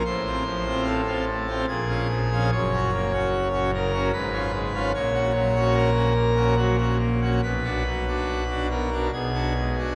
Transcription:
<<
  \new Staff \with { instrumentName = "Pipe organ" } { \time 3/4 \key bes \minor \tempo 4 = 73 << { c''4 a'4 aes'4 | \key fis \major cis''4. ais'8 b'4 | cis''4 ais'4 fis'4 | b'4. ais'8 gis'4 | } \\ { a,16 <c' f'>16 f16 <c' f'>8 <c' f'>16 a16 <c' f'>16 bes,16 <des' f'>16 f16 <des' f'>16 | fis,16 <cis' fis'>16 ais16 <cis' fis'>8 <cis' fis'>16 cis16 <cis' fis'>16 gis,16 <cis' eis'>16 gis16 <cis' eis'>16 | ais,16 <cis' fis'>16 fis16 <cis' fis'>8 <cis' fis'>16 ais16 <cis' fis'>16 fis16 <cis' fis'>16 ais16 <cis' fis'>16 | b,16 <d' fis'>16 fis16 <d' fis'>8 <d' fis'>16 b16 <d' fis'>16 b,16 <d' fis'>16 gis16 <d' fis'>16 | } >> }
  \new Staff \with { instrumentName = "Pipe organ" } { \clef bass \time 3/4 \key bes \minor a,,2 bes,,4 | \key fis \major fis,,2 gis,,4 | ais,,2. | b,,2 b,,4 | }
>>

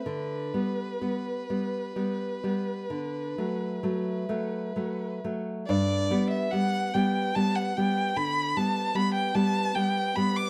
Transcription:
<<
  \new Staff \with { instrumentName = "Violin" } { \time 12/8 \key g \major \tempo 4. = 47 b'1~ b'4. r8 | d''8. e''16 fis''8 g''8 a''16 fis''16 g''8 b''8 a''8 b''16 g''16 a''8 g''8 b''16 d'''16 | }
  \new Staff \with { instrumentName = "Nylon-string guitar" } { \clef bass \time 12/8 \key g \major d8 <g b>8 <g b>8 <g b>8 <g b>8 <g b>8 d8 <fis a>8 <fis a>8 <fis a>8 <fis a>8 <fis a>8 | g,8 <g b>8 <g b>8 <g b>8 <g b>8 <g b>8 d8 <g b>8 <g b>8 <g b>8 <g b>8 <g b>8 | }
>>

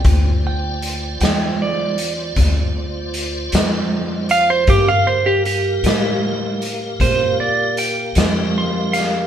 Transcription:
<<
  \new Staff \with { instrumentName = "Electric slide guitar" } { \time 12/8 \key d \minor \tempo 4. = 52 g''8 g''4 g''8 d''2. r8 f''16 c''16 | g'16 f''16 c''16 g'16 g'4 r4 c''8 d''8 g''4 c'''8 f''8 | }
  \new Staff \with { instrumentName = "Tonewheel organ" } { \time 12/8 \key d \minor <f' c'' d''>1. | <g' bes' f''>1. | }
  \new Staff \with { instrumentName = "Upright bass" } { \clef bass \time 12/8 \key d \minor d,4. e,4. d,4. f,4. | g,4. a,4. bes,4. f,4. | }
  \new DrumStaff \with { instrumentName = "Drums" } \drummode { \time 12/8 <hh bd>4 hh8 <hh sn>4 hh8 <hh bd>4 hh8 <hh sn>4 hh8 | <hh bd>4 hh8 <hh sn>4 hh8 <hh bd>4 hh8 <hh sn>4 <hh sn>8 | }
>>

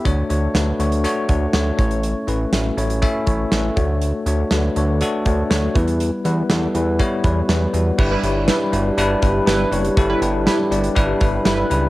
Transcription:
<<
  \new Staff \with { instrumentName = "Analog polysynth" } { \time 4/4 \key g \lydian \tempo 4 = 121 r1 | r1 | r1 | r1 |
r16 <g e' b'>16 r8 <g e' b'>16 r4. r16 <g e' b'>8 r8 | r16 <g e' b'>16 r8 <g e' b'>16 r4. r16 <g e' b'>8 r8 | }
  \new Staff \with { instrumentName = "Tine electric piano" } { \time 4/4 \key g \lydian <a d' fis' cis''>8 <a d' fis' cis''>8 <a d' fis' b'>8 <a d' fis' cis''>8 <a d' fis' cis''>8 <a d' fis' cis''>8 <a d' fis' cis''>8 <a cis' e' cis''>8~ | <a cis' e' cis''>8 <a cis' e' b'>8 <a cis' e' fis'>8 <a cis' e' cis''>8 <a cis' e' e''>8 <a cis' e' cis''>8 <a cis' e' b'>8 <a d' fis' cis''>8~ | <a d' fis' cis''>8 <a d' fis' cis''>8 <a d' fis' b'>8 <a d' fis' cis''>8 <a d' fis' a'>8 <a d' fis' cis''>8 <a d' fis' cis''>8 <g b e' b'>8~ | <g b e' b'>8 <g b e' b'>8 <g b e' a'>8 <g b e' b'>8 <g b e' cis''>8 <g b e' b'>8 <g b e' b'>8 <g b e' fis'>8 |
<g d' e' b'>8 <g d' e' cis''>8 <g d' e' b'>8 <g d' e' fis'>8 <g d' e' b'>8 <g d' e' b'>8 <g d' e' b'>8 <g d' e' cis''>8 | <g d' e' a'>8 <g d' e' b'>8 <g d' e' g'>8 <g d' e' d''>8 <g d' e' b'>8 <g d' e' b'>8 <g d' e' b'>8 <g d' e' b'>8 | }
  \new Staff \with { instrumentName = "French horn section" } { \time 4/4 \key g \lydian r1 | r1 | r1 | r1 |
<d g b e' g'>1~ | <d g b e' g'>1 | }
  \new Staff \with { instrumentName = "Analog synth bass" } { \clef bass \time 4/4 \key g \lydian d,8 d,8 d,8 d,8. r16 d,8 d,8 a,,8~ | a,,8 a,,8 a,,8 a,,8. r16 a,,8 a,,8 d,8~ | d,8 d,8 d,8 d,8. r16 d,8 d,8 e,8~ | e,8 e,8 e,8 e,8. r16 e,8 e,8 e,8 |
g,,8 g,,8. r16 g,,8 g,,8 g,,8 g,,8 fis,,8 | g,,8 g,,8. r16 g,,8 g,,8 g,,8 g,,8 cis,8 | }
  \new DrumStaff \with { instrumentName = "Drums" } \drummode { \time 4/4 <hh bd>8 hh8 <hh sn>8 hh16 hh16 hh8 <hh bd>8 <hh sn>8 <hh bd>16 hh16 | hh8 hh8 <hh sn>8 hh16 hh16 <hh bd>8 <hh bd>8 <hh sn>8 <hh bd>8 | hh8 hh8 <hh sn>8 hh8 hh8 <hh bd>8 <hh sn>8 <hh bd>16 hh16 | hh8 hh8 <hh sn>8 hh8 <hh bd>8 <hh bd>8 <hh sn>8 hh8 |
<cymc bd>8 hh8 <hh sn tamb>8 hh8 hh8 <hh bd>8 <hh sn tamb>8 hh16 hh16 | <hh bd>8 hh8 <hh sn tamb>8 hh16 hh16 <hh bd>8 <hh bd>8 <hh sn tamb>8 hh8 | }
>>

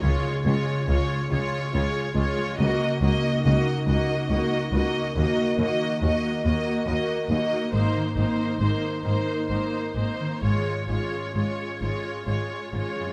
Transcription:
<<
  \new Staff \with { instrumentName = "Violin section" } { \time 6/8 \key des \major \tempo 4. = 47 des''8 des''8 des''8 des''8 des''8 des''8 | ees''8 ees''8 ees''8 ees''8 ees''8 ees''8 | ees''8 ees''8 ees''8 ees''8 ees''8 ees''8 | c''8 c''8 c''8 c''8 c''8 c''8 |
des''8 des''8 des''8 des''8 des''8 des''8 | }
  \new Staff \with { instrumentName = "Harp" } { \time 6/8 \key des \major des16 aes16 des'16 f'16 aes'16 f'16 aes'16 f'16 aes'16 f'16 des'16 aes16 | des16 des'16 bes16 ees'16 ges'16 ees'16 ges'16 ees'16 ges'16 ees'16 bes16 des'16 | ees16 bes16 ees'16 ges'16 bes'16 ges'16 bes'16 ges'16 bes'16 ges'16 ees'16 bes16 | aes,16 ees16 c'16 ees'16 bes'16 ees'16 bes'16 ees'16 bes'16 ees'16 c'16 ees16 |
aes,16 aes16 des'16 f'16 aes'16 f'16 aes'16 f'16 aes'16 f'16 des'16 aes16 | }
  \new Staff \with { instrumentName = "Viola section" } { \time 6/8 \key des \major <aes f'>8 <aes f'>8 <aes f'>8 <aes f'>8 <aes f'>8 <aes f'>8 | <bes ges'>8 <bes ges'>8 <bes ges'>8 <bes ges'>8 <bes ges'>8 <bes ges'>8 | <bes ges'>8 <bes ges'>8 <bes ges'>8 <bes ges'>8 <bes ges'>8 <bes ges'>8 | <bes ees'>8 <bes ees'>8 <bes ees'>8 <bes ees'>8 <bes ees'>8 <bes ees'>8 |
<aes f'>8 <aes f'>8 <aes f'>8 <aes f'>8 <aes f'>8 <aes f'>8 | }
  \new Staff \with { instrumentName = "Cello section" } { \clef bass \time 6/8 \key des \major des,8 des,8 des,8 des,8 des,8 des,8 | des,8 des,8 des,8 des,8 des,8 des,8 | ees,8 ees,8 ees,8 ees,8 ees,8 ees,8 | aes,8 aes,8 aes,8 aes,8 aes,8 aes,8 |
aes,8 aes,8 aes,8 aes,8 aes,8 aes,8 | }
  \new Staff \with { instrumentName = "Double bass section" } { \clef bass \time 6/8 \key des \major des,8 des,8 des,8 des,8 des,8 des,8 | des,8 des,8 des,8 des,8 des,8 des,8 | ees,8 ees,8 ees,8 ees,8 ees,8 ees,8 | aes,,8 aes,,8 aes,,8 aes,,8 aes,,8 aes,,8 |
aes,,8 aes,,8 aes,,8 aes,,8 aes,,8 aes,,8 | }
>>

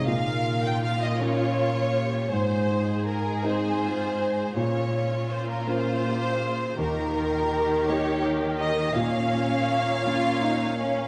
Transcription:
<<
  \new Staff \with { instrumentName = "Violin section" } { \time 6/8 \key bes \dorian \tempo 4. = 54 f''8. g''16 f''16 ees''16 des''4. | c''4 bes'8 c''4. | des''4 c''16 bes'16 c''4. | bes'4. des''8 r8 ees''8 |
f''2. | }
  \new Staff \with { instrumentName = "Viola section" } { \time 6/8 \key bes \dorian bes'4. ees'8 f'8 g'8 | aes'4. ees'8 f'8 ees'8 | des'4. f'8 g'8 aes'8 | g'8 f'8 g'8 bes'4. |
des''2. | }
  \new Staff \with { instrumentName = "Violin section" } { \time 6/8 \key bes \dorian f'2. | aes'2. | f'2. | g'2. |
des'4. f'8 ees'8 des'8 | }
  \new Staff \with { instrumentName = "Harp" } { \time 6/8 \key bes \dorian bes,8 des'8 f'8 des'8 bes8 f'8 | aes,8 ees'8 aes'8 ees'8 c'8 aes'8 | bes,8 des'8 f'8 des'8 bes8 f'8 | ees8 g'8 bes'8 g'8 ees'8 bes'8 |
bes,8 des'8 bes'8 des'8 bes8 bes'8 | }
  \new Staff \with { instrumentName = "Grand piano" } { \time 6/8 \key bes \dorian bes,4. <bes des' f'>4. | aes,4. <c' ees' aes'>4. | bes,4. <bes des' f'>4. | ees,4. <bes ees' g'>4. |
bes,4. <bes des' bes'>4. | }
  \new Staff \with { instrumentName = "Cello section" } { \clef bass \time 6/8 \key bes \dorian bes,2. | aes,2. | bes,2. | ees2. |
bes,2. | }
>>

